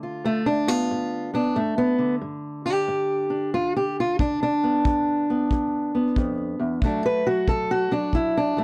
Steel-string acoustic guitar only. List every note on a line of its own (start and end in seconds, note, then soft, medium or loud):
0.00 0.21 G2 medium
0.00 1.97 D3 soft
0.00 0.46 F4 medium
0.24 0.86 G2 medium
0.24 0.48 A3 loud
0.46 0.68 D4 loud
0.67 1.33 B3 soft
0.67 1.34 F4 medium
0.91 1.52 G2 medium
1.34 1.59 B3 soft
1.34 1.57 D4 loud
1.56 2.17 G2 medium
1.56 1.78 A3 medium
1.78 2.14 B3 medium
1.99 6.82 D3 soft
2.21 2.83 G2 medium
2.65 3.30 D4 medium
2.65 3.54 G4 loud
2.88 3.49 G2 medium
3.30 4.20 D4 medium
3.54 4.15 G2 medium
3.54 3.76 F4 loud
3.76 3.98 G4 medium
4.00 4.19 F4 loud
4.20 4.81 G2 medium
4.20 4.42 D4 loud
4.43 6.39 D4 loud
4.63 5.28 B3 soft
4.86 5.47 G2 medium
5.30 5.94 B3 medium
5.53 6.13 G2 medium
5.95 6.80 B3 soft
6.17 6.59 F2 medium
6.60 6.83 E2 medium
6.83 7.44 D2 medium
6.83 7.25 F#3 medium
6.83 7.26 A3 medium
6.83 7.05 D4 medium
7.06 7.27 B4 loud
7.27 7.90 F#3 soft
7.27 7.48 F#4 medium
7.49 8.09 D2 medium
7.49 7.70 A4 loud
7.71 7.92 F#4 loud
7.91 8.56 F#3 medium
7.91 8.14 D4 medium
8.15 8.64 D2 medium
8.15 8.36 E4 medium
8.37 8.58 D4 medium
8.57 8.64 F#3 medium
8.57 8.64 A3 medium